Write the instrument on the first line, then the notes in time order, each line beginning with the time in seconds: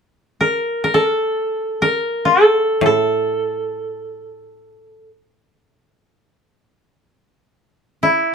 koto
0.41 A#4
0.84 A#4
0.94 A4
1.82 A#4
2.25 A4
2.81 A2
2.86 A4
8.03 E4